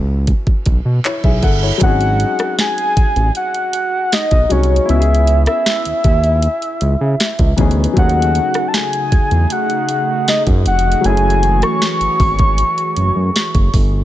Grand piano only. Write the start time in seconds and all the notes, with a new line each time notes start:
Already playing: F#3 B3 C#4 E4 A4
1.05 E4 C#5
1.24 G#4 E5
1.44 A4 F#5
1.63 E4 C#5
1.78 F#3 G#3
1.82 C4 D#4
1.86 C#4 G#4
4.49 F#3 G#3 C#4 D#4
4.53 F#4
4.86 B3 E4
4.90 C#4
4.94 F#4
5.00 G#4
7.57 E3 B3 C#4 D#4
7.61 G#4
7.93 F#3 A3
7.97 C#4 D#4
8.02 G#4
11.01 F#3 A3
11.05 C#4 E4
11.09 G#4